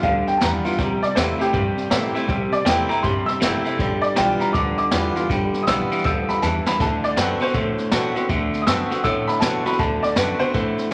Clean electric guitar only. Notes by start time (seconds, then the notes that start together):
0.03 G2 D3
0.41 G2 E3
0.64 G2 E3
0.78 C3 G3
1.16 C3 A3
1.39 C3 A3
1.53 C3 G3
1.90 C3 A3
2.15 C3 A3
2.28 C3 G3
2.65 C3 A3
2.89 C3 A3
3.03 C3 G3
3.40 C3 A3
3.65 C3 A3
3.78 G2 D3
4.15 G2 E3
4.39 G2 E3
4.54 G2 D3
4.92 G2 E3
5.15 G2 E3
5.29 G2 D3
5.67 G2 E3
5.91 G2 E3
6.05 G2 D3
6.42 G2 E3
6.66 G2 E3
6.80 D3 A3
7.17 D3 B3
7.41 D3 B3
7.54 D3 A3
7.92 D3 B3
8.15 D3 B3
8.30 D3 A3
8.67 D3 B3
8.90 D3 B3
9.04 D3 A3
9.42 D3 B3
9.66 D3 B3
9.79 D3 A3
10.16 D3 B3
10.40 D3 B3
10.54 D3 A3